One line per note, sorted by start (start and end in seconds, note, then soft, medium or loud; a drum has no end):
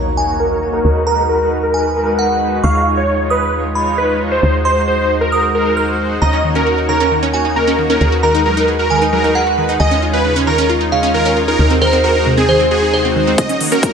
0.00 0.82 D#2 medium
0.00 0.11 A#3 medium
0.00 0.11 D#4 medium
0.00 0.11 F#4 medium
0.00 0.11 C#5 medium
0.00 0.15 A#5 medium
0.00 impact medium
0.17 0.33 A#3 medium
0.17 0.33 D#4 medium
0.17 0.33 F#4 medium
0.17 0.33 C#5 medium
0.17 0.60 G#5 medium
0.40 0.48 A#3 medium
0.40 0.48 D#4 medium
0.40 0.47 F#4 medium
0.40 0.62 A#4 medium
0.40 0.47 C#5 medium
0.51 0.59 A#3 medium
0.51 0.59 D#4 medium
0.51 0.59 F#4 medium
0.51 0.59 C#5 medium
0.62 0.78 A#3 medium
0.62 0.78 D#4 medium
0.62 0.78 F#4 medium
0.62 0.78 C#5 medium
0.73 0.96 A#4 loud
0.84 2.61 D#2 medium
0.84 1.00 G#3 medium
0.84 1.00 D#4 medium
0.84 1.00 F#4 medium
0.84 1.00 B4 medium
1.07 1.22 G#3 medium
1.07 1.22 D#4 medium
1.07 1.22 F#4 medium
1.07 1.22 A#4 medium
1.07 1.23 B4 medium
1.07 1.65 A#5 medium
1.29 1.37 G#3 medium
1.29 1.37 D#4 medium
1.29 1.37 F#4 medium
1.29 1.52 A#4 medium
1.29 1.37 B4 medium
1.40 1.56 G#3 medium
1.40 1.56 D#4 medium
1.40 1.56 F#4 medium
1.40 1.56 B4 medium
1.63 1.85 A#4 medium
1.74 1.90 G#3 medium
1.74 1.90 D#4 medium
1.74 1.90 F#4 medium
1.74 1.90 B4 medium
1.74 2.17 G#5 medium
1.96 2.12 G#3 medium
1.96 2.12 D#4 medium
1.96 2.12 F#4 medium
1.96 2.27 A#4 medium
1.96 2.12 B4 medium
2.19 2.27 G#3 medium
2.19 2.27 D#4 medium
2.19 2.27 F#4 medium
2.19 2.27 B4 medium
2.19 2.61 F#5 medium
2.30 2.38 G#3 medium
2.30 2.38 D#4 medium
2.30 2.38 F#4 medium
2.30 2.38 B4 medium
2.41 2.57 G#3 medium
2.41 2.57 D#4 medium
2.41 2.57 F#4 medium
2.41 2.57 B4 medium
2.63 4.40 D#2 medium
2.63 2.79 G#3 medium
2.63 2.79 D#4 medium
2.63 2.79 F4 medium
2.63 2.79 C#5 medium
2.63 2.86 F5 loud
2.63 3.22 C#6 medium
2.86 3.02 G#3 medium
2.86 3.02 D#4 medium
2.86 3.02 F4 medium
2.86 3.02 C#5 medium
2.97 3.20 C#5 medium
3.08 3.16 G#3 medium
3.08 3.16 D#4 medium
3.08 3.16 F4 medium
3.08 3.16 C#5 medium
3.19 3.35 G#3 medium
3.19 3.35 D#4 medium
3.19 3.35 F4 medium
3.19 3.35 C#5 medium
3.30 3.53 B4 medium
3.30 3.73 D#6 medium
3.53 3.69 G#3 medium
3.53 3.69 D#4 medium
3.53 3.69 F4 medium
3.53 3.69 C#5 medium
3.75 3.91 G#3 medium
3.75 3.91 D#4 medium
3.75 3.91 F4 medium
3.75 3.91 C#5 medium
3.75 4.18 B5 medium
3.98 4.06 G#3 medium
3.98 4.06 D#4 medium
3.98 4.06 F4 medium
3.98 4.20 B4 medium
3.98 4.06 C#5 medium
4.09 4.17 G#3 medium
4.09 4.17 D#4 medium
4.09 4.17 F4 medium
4.09 4.17 C#5 medium
4.21 4.36 G#3 medium
4.21 4.36 D#4 medium
4.21 4.36 F4 medium
4.21 4.36 C#5 medium
4.31 4.54 C5 medium
4.43 6.20 D#2 medium
4.43 4.59 G#3 medium
4.43 4.59 D#4 medium
4.43 4.58 F#4 medium
4.43 4.59 C5 medium
4.65 4.81 G#3 medium
4.65 4.81 D#4 medium
4.65 4.81 F#4 medium
4.65 4.80 C5 medium
4.65 4.81 C5 medium
4.65 5.23 C6 medium
4.88 4.95 G#3 medium
4.88 4.95 D#4 medium
4.88 4.95 F#4 medium
4.88 4.95 C5 medium
4.88 5.10 C5 loud
4.99 5.14 G#3 medium
4.99 5.14 D#4 medium
4.99 5.14 F#4 medium
4.99 5.14 C5 medium
5.21 5.44 A#4 medium
5.32 5.48 G#3 medium
5.32 5.48 D#4 medium
5.32 5.48 F#4 medium
5.32 5.48 C5 medium
5.32 5.75 D#6 medium
5.55 5.71 G#3 medium
5.55 5.70 D#4 medium
5.55 5.71 F#4 medium
5.55 5.85 A#4 loud
5.55 5.71 C5 medium
5.77 5.85 G#3 medium
5.77 5.85 D#4 medium
5.77 5.85 F#4 medium
5.77 5.85 C5 medium
5.77 6.19 F6 medium
5.88 5.96 G#3 medium
5.88 5.96 D#4 medium
5.88 5.96 F#4 medium
5.88 5.96 C5 medium
5.99 6.15 G#3 medium
5.99 6.15 D#4 medium
5.99 6.15 F#4 medium
5.99 6.15 C5 medium
6.21 7.99 D#2 medium
6.21 6.28 C#3 medium
6.21 6.37 A#3 medium
6.21 6.37 D#4 medium
6.21 6.37 F#4 medium
6.21 6.37 C#5 medium
6.21 6.44 D#5 loud
6.21 6.80 A#5 loud
6.33 6.37 C#4 loud
6.44 6.50 D#3 medium
6.44 6.60 A#3 medium
6.44 6.60 D#4 medium
6.44 6.60 F#4 medium
6.44 6.60 C#5 medium
6.55 6.61 C#4 loud
6.55 6.78 A#4 medium
6.66 6.74 A#3 medium
6.66 6.74 D#4 medium
6.66 6.74 F#4 medium
6.66 6.72 F#4 medium
6.66 6.74 C#5 medium
6.78 6.93 A#3 medium
6.78 6.93 D#4 medium
6.78 6.87 D#4 medium
6.78 6.93 F#4 medium
6.78 6.93 C#5 medium
6.89 6.95 C#3 medium
6.89 7.12 A#4 medium
6.89 7.31 A#5 medium
7.00 7.04 C#4 loud
7.11 7.17 D#3 medium
7.11 7.27 A#3 medium
7.11 7.27 D#4 medium
7.11 7.27 F#4 medium
7.11 7.27 C#5 medium
7.23 7.28 C#4 loud
7.33 7.49 A#3 medium
7.33 7.49 D#4 medium
7.33 7.49 F#4 medium
7.33 7.40 F#4 medium
7.33 7.49 C#5 medium
7.33 7.76 G#5 medium
7.45 7.54 D#4 medium
7.56 7.62 C#3 medium
7.56 7.64 A#3 medium
7.56 7.64 D#4 medium
7.56 7.64 F#4 medium
7.56 7.79 A#4 medium
7.56 7.64 C#5 medium
7.67 7.75 A#3 medium
7.67 7.71 C#4 loud
7.67 7.75 D#4 medium
7.67 7.75 F#4 medium
7.67 7.75 C#5 medium
7.78 7.84 D#3 medium
7.78 7.94 A#3 medium
7.78 7.94 D#4 medium
7.78 7.94 F#4 medium
7.78 7.94 C#5 medium
7.90 7.96 C#4 loud
7.90 8.12 A#4 medium
8.01 9.78 D#2 medium
8.01 8.16 G#3 medium
8.01 8.16 D#4 medium
8.01 8.16 F#4 medium
8.01 8.07 G#4 medium
8.01 8.16 B4 medium
8.12 8.21 F#4 medium
8.23 8.29 D#3 medium
8.23 8.39 G#3 medium
8.23 8.39 D#4 medium
8.23 8.39 F#4 medium
8.23 8.38 A#4 medium
8.23 8.39 B4 medium
8.23 8.81 A#5 medium
8.35 8.38 D#4 loud
8.45 8.52 F#3 medium
8.45 8.53 G#3 medium
8.45 8.54 D#4 medium
8.45 8.53 F#4 medium
8.45 8.68 A#4 medium
8.45 8.53 B4 medium
8.57 8.72 G#3 medium
8.57 8.73 D#4 medium
8.57 8.63 D#4 loud
8.57 8.72 F#4 medium
8.57 8.72 B4 medium
8.68 8.74 G#4 medium
8.79 8.88 F#4 medium
8.79 9.02 A#4 loud
8.90 8.96 D#3 medium
8.90 9.06 G#3 medium
8.90 9.06 D#4 medium
8.90 9.06 F#4 medium
8.90 9.06 B4 medium
8.90 9.33 G#5 medium
9.02 9.05 D#4 loud
9.12 9.19 F#3 medium
9.12 9.28 G#3 medium
9.12 9.28 D#4 medium
9.12 9.28 F#4 medium
9.12 9.43 A#4 medium
9.12 9.28 B4 medium
9.24 9.30 D#4 loud
9.35 9.43 G#3 medium
9.35 9.43 D#4 medium
9.35 9.43 F#4 medium
9.35 9.41 G#4 medium
9.35 9.43 B4 medium
9.35 9.78 F#5 medium
9.46 9.54 G#3 medium
9.46 9.54 D#4 medium
9.46 9.54 F#4 medium
9.46 9.55 F#4 medium
9.46 9.54 B4 medium
9.57 9.64 D#3 medium
9.57 9.73 G#3 medium
9.57 9.73 D#4 medium
9.57 9.73 F#4 medium
9.57 9.73 B4 medium
9.69 9.72 D#4 loud
9.80 11.57 D#2 medium
9.80 9.86 D#3 medium
9.80 9.96 G#3 medium
9.80 9.96 D#4 medium
9.80 9.96 F4 medium
9.80 9.96 C#5 medium
9.80 10.03 D#5 loud
9.80 10.38 G#5 medium
9.91 9.97 C#4 loud
10.02 10.18 G#3 medium
10.02 10.18 D#4 medium
10.02 10.08 F4 medium
10.02 10.18 F4 medium
10.02 10.18 C#5 medium
10.13 10.22 D#4 medium
10.13 10.36 B4 medium
10.25 10.31 C#3 medium
10.25 10.33 G#3 medium
10.25 10.33 D#4 medium
10.25 10.33 F4 medium
10.25 10.33 C#5 medium
10.36 10.52 G#3 medium
10.36 10.39 C#4 loud
10.36 10.52 D#4 medium
10.36 10.52 F4 medium
10.36 10.52 C#5 medium
10.47 10.53 D#3 medium
10.47 10.70 A#4 loud
10.47 10.90 A#5 medium
10.58 10.64 C#4 loud
10.69 10.85 G#3 medium
10.69 10.85 D#4 medium
10.69 10.75 F4 medium
10.69 10.85 F4 medium
10.69 10.85 C#5 medium
10.81 10.89 D#4 medium
10.92 10.98 C#3 medium
10.92 11.08 G#3 medium
10.92 11.08 D#4 medium
10.92 11.08 F4 medium
10.92 11.08 C#5 medium
10.92 11.35 F5 medium
11.03 11.07 C#4 loud
11.14 11.20 D#3 medium
11.14 11.23 G#3 medium
11.14 11.23 D#4 medium
11.14 11.23 F4 medium
11.14 11.37 A#4 loud
11.14 11.23 C#5 medium
11.25 11.34 G#3 medium
11.25 11.31 C#4 loud
11.25 11.34 D#4 medium
11.25 11.34 F4 medium
11.25 11.34 C#5 medium
11.37 11.53 G#3 medium
11.37 11.53 D#4 medium
11.37 11.43 F4 medium
11.37 11.53 F4 medium
11.37 11.53 C#5 medium
11.48 11.57 D#4 medium
11.48 11.71 A#4 medium
11.59 13.36 D#2 medium
11.59 11.65 C3 medium
11.59 11.75 G#3 medium
11.59 11.75 D#4 medium
11.59 11.75 F#4 medium
11.59 11.75 C5 medium
11.70 11.74 C4 loud
11.81 11.87 D#3 medium
11.81 11.97 G#3 medium
11.81 11.97 D#4 medium
11.81 11.97 F#4 medium
11.81 11.97 A#4 medium
11.81 12.40 C5 medium
11.81 11.97 C5 medium
11.93 11.99 C4 loud
12.04 12.12 G#3 medium
12.04 12.12 D#4 medium
12.04 12.10 F#4 medium
12.04 12.12 F#4 medium
12.04 12.26 A#4 medium
12.04 12.12 C5 medium
12.15 12.31 G#3 medium
12.15 12.31 D#4 medium
12.15 12.24 D#4 medium
12.15 12.31 F#4 medium
12.15 12.31 C5 medium
12.26 12.32 C3 medium
12.37 12.41 C4 loud
12.37 12.60 G#4 medium
12.48 12.55 D#3 medium
12.48 12.64 G#3 medium
12.48 12.64 D#4 medium
12.48 12.64 F#4 medium
12.48 12.64 C5 medium
12.48 12.91 C5 medium
12.60 12.66 C4 loud
12.71 12.87 G#3 medium
12.71 12.87 D#4 medium
12.71 12.87 F#4 medium
12.71 12.77 F#4 medium
12.71 13.01 G#4 loud
12.71 12.87 C5 medium
12.82 12.91 D#4 medium
12.93 12.99 C3 medium
12.93 13.01 G#3 medium
12.93 13.01 D#4 medium
12.93 13.01 F#4 medium
12.93 13.01 C5 medium
12.93 13.36 C5 medium
13.04 13.12 G#3 medium
13.04 13.08 C4 medium
13.04 13.12 D#4 medium
13.04 13.12 F#4 medium
13.04 13.12 C5 medium
13.16 13.22 D#3 medium
13.16 13.32 G#3 medium
13.16 13.32 D#4 medium
13.16 13.31 F#4 medium
13.16 13.31 C5 medium
13.27 13.33 C4 loud
13.38 13.44 C#3 medium
13.38 13.54 A#3 medium
13.38 13.54 D#4 medium
13.38 13.54 F#4 medium
13.38 13.54 C#5 medium
13.38 13.61 D#5 loud
13.38 kick loud
13.38 closed hi-hat medium
13.38 riser medium
13.49 13.53 C#4 loud
13.49 closed hi-hat medium
13.61 13.66 D#3 medium
13.61 13.76 A#3 medium
13.61 13.76 D#4 medium
13.61 13.76 F#4 medium
13.61 13.76 C#5 medium
13.61 open hi-hat loud
13.72 13.78 C#4 loud
13.72 13.93 A#4 medium
13.72 closed hi-hat medium
13.83 13.91 A#3 medium
13.83 13.91 D#4 medium
13.83 13.91 F#4 medium
13.83 13.89 F#4 medium
13.83 13.91 C#5 medium
13.83 kick loud
13.83 closed hi-hat medium